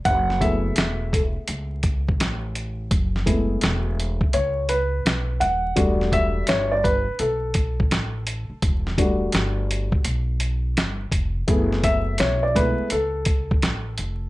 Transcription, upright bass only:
X:1
M:4/4
L:1/16
Q:"Swing 16ths" 1/4=84
K:Edor
V:1 name="Upright bass" clef=bass
F,,,4 E,,,3 z C,,4 A,,,4 | F,,,4 E,,,3 z C,,4 B,,,2 ^D,,,2 | E,,,4 G,,,3 z B,,,4 A,,,3 z | E,,,4 G,,,3 z B,,,4 G,,,2 ^E,,,2 |
F,,,4 B,,,3 z C,,4 A,,,2 ^E,,,2 |]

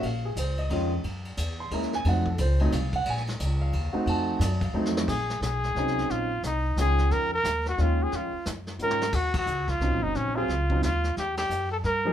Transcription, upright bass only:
X:1
M:3/4
L:1/8
Q:"Swing" 1/4=178
K:Bbm
V:1 name="Upright bass" clef=bass
B,,,2 D,,2 F,,2 | G,,2 _F,,2 E,,2 | F,,2 D,,2 C,,2 | B,,,2 D,,2 E,, z |
F,,2 G,,2 F,,2 | B,,,2 _C,,2 =C,,2 | B,,,2 C,,2 D,,2 | F,,2 E,,2 E,,2 |
F,, z G,,2 A,,2 | E,,2 D,,2 (3C,, B,,, G,,, | B,,,2 D,,2 E,,2 | =E,,2 G,,2 =G,,2 |]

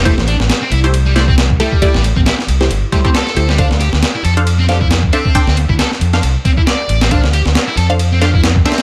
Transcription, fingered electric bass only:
X:1
M:4/4
L:1/16
Q:"Swing 16ths" 1/4=136
K:Ddor
V:1 name="Fingered electric bass" clef=bass
E,,, A,,,2 A,,, z2 C,,8 z2 | z A,,,2 A,,, z2 C,,2 G,,, z4 z D,,2- | D,, D,,2 D,, z2 F,,8 z2 | z D,,2 D,, z2 F,,2 C,, z4 z A,,,2- |
A,,, D,,2 D,, z2 F,,8 z2 |]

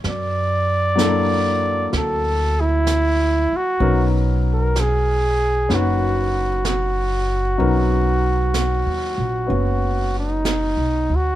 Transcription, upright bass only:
X:1
M:4/4
L:1/8
Q:"Swing" 1/4=64
K:B
V:1 name="Upright bass" clef=bass
F,,4 =D,,3 z | B,,,4 F,,,4 | B,,,2- (3B,,, D,, A,,, F,,,2- (3F,,, B,,, =D,, |]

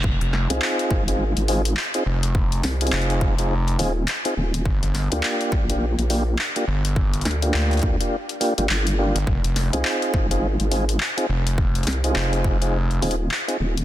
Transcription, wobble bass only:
X:1
M:4/4
L:1/16
Q:"Swing 16ths" 1/4=104
K:Fdor
V:1 name="Wobble bass" clef=bass
z3 C,, z2 A,,,3 A,,,3 z4 | z2 C,,2 z6 E,,,2 z2 E,,,2 | z3 D,, z2 B,,,3 B,,,3 z4 | z2 D,,2 z2 D,, z4 G,,, G,,,3 z |
z3 C,, z2 A,,,3 A,,,3 z4 | z2 C,,2 z6 E,,,2 z2 E,,,2 |]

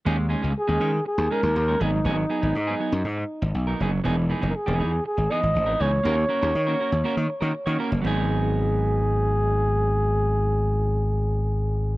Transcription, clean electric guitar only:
X:1
M:4/4
L:1/16
Q:1/4=120
K:G#m
V:1 name="Clean electric guitar"
[G,CDG]2 [G,CDG] [G,CDG] z [G,CDG] [G,CDG] z3 [G,CDG]2 z [G,CDA] [F,B,DG]2 | [F,B,DG]2 [F,B,DG] [F,B,DG] z [F,B,DG] [F,B,DG] z6 [F,B,DA] [F,B,DG]2 | [E,B,DG]2 [E,B,DG] [E,B,DG] z [E,B,DG] [E,B,DG] z3 [E,B,DG]2 z [E,B,DA] [E,B,DG]2 | [A,CFA]2 [A,CFA] [A,CFA] z [A,CFA] [A,CFA] z [A,CFA]2 z [A,CFA] z [A,CFc] [A,CFA]2 |
[F,B,DG]16- | [F,B,DG]16 |]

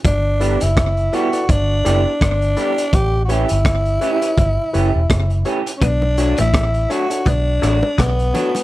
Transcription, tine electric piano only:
X:1
M:4/4
L:1/16
Q:"Swing 16ths" 1/4=83
K:Bm
V:1 name="Tine electric piano"
z2 [EABd] z3 [EABd] [EABd] z2 [EABd] z3 [EABd] z | z2 [EGBc] z3 [EGBc] [EGBc] z2 [EGBc] z3 [EGBc] z | z2 [DFAc] z3 [DFAc] [DFAc] z2 [DFAc] [Ac] z2 [DFAc] z |]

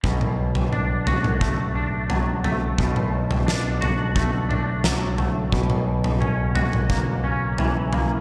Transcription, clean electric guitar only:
X:1
M:4/4
L:1/8
Q:1/4=88
K:Bm
V:1 name="Clean electric guitar"
B,,2 D F A, D F, A, | B,,2 D F A, D F, A, | B,,2 C F ^A, C E, A, |]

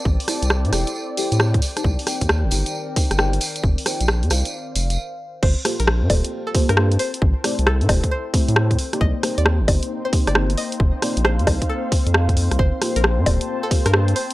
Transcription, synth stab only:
X:1
M:4/4
L:1/16
Q:"Swing 16ths" 1/4=134
K:Gm
V:1 name="Synth stab"
z2 [=EGAca] z3 [EGAcg] z3 [EGAcg]4 z [_EGBca]- | [EGBca]2 [EGBcg] z3 [EGBcg]4 [EGBcg] z [EGBcg] z3 | z2 [EFBcg] z3 [EFBcf] z8 z | z2 [B,FGAc] z3 [B,FGAc]4 [B,FGAc] z [B,FGAc] z3 |
z2 [A,C=EGd] z3 [A,CEGc] z3 [A,CEGc]4 z [B,C_EGd]- | [B,CEGd]2 [B,CEGc] z3 [B,CEGc]4 [B,CEGc] z [B,CEGc] z3 | z2 [B,CEFd] z3 [B,CEFc] z8 z | z2 [B,FGAc] z3 [B,FGAc]4 [B,FGAc] z [B,FGAc] z3 |]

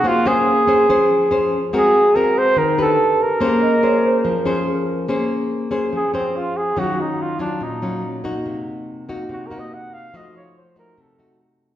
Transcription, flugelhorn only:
X:1
M:4/4
L:1/8
Q:1/4=143
K:Bbm
V:1 name="Flugelhorn"
F A6 z | A2 B c B =A2 B- | B6 z2 | z4 A C F A |
G E F =D E3 z | z4 (3G B e g f | e d c B =A2 z2 |]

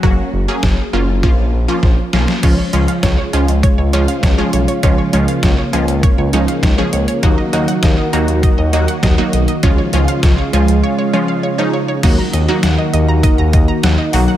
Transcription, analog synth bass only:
X:1
M:4/4
L:1/16
Q:1/4=100
K:Dbmix
V:1 name="Analog synth bass" clef=bass
G,,, z G,,, z G,,, z G,,, G,,, B,,, B,,, B,,, z B,,, z C,, z | D,, z D,, z D,, z D,, D,, z D,, D,, z D,, z C,, z | D,, z D,, z D,, z D,, D,, z D,, D,, z D,, z D,, z | E,, z E,, z E,, z E,, E,, z E,, E,, z E,, z C,, z |
D,, z D,, z D,, z D,, D,, z8 | E,, z E,, z E,, z E,, E,, z E,, E,, z E,, z C,, z |]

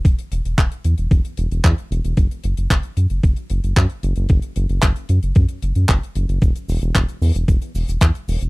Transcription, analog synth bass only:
X:1
M:4/4
L:1/16
Q:1/4=113
K:F#dor
V:1 name="Analog synth bass" clef=bass
E,,, z E,,, E,,, E,,, z E,, E,,, E,,, z E,,, E,,, E,, z E,,, E,,, | F,,, z F,,, F,,, F,,, z F,, F,,, F,,, z F,,, F,,, F,, z F,,, F,,, | F,,, z F,,, F,,, F,,, z F,, F,,, F,, z F,,, F,, F,,, z F,,, F,,, | E,,, z E,,, E,,, E,,, z E,, E,,, E,,, z E,,, E,,, E,, z E,,, E,,, |]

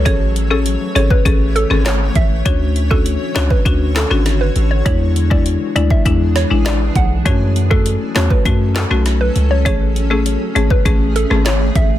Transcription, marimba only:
X:1
M:4/4
L:1/16
Q:1/4=100
K:A
V:1 name="Marimba"
[CGA] z2 [CGA] z2 [CGA] z [CGA]3 [CGA] z4 | [CDF] z2 [CDF] z2 [CDF] z [CDF]3 [CDF] z4 | [G,DE] z2 [G,DE] z2 [G,DE] z [G,DE]3 [G,DE] z4 | [A,CF] z2 [A,CF] z2 [A,CF] z [A,CF]3 [A,CF] z4 |
[A,CG] z2 [A,CG] z2 [A,CG] z [A,CG]3 [A,CG] z4 |]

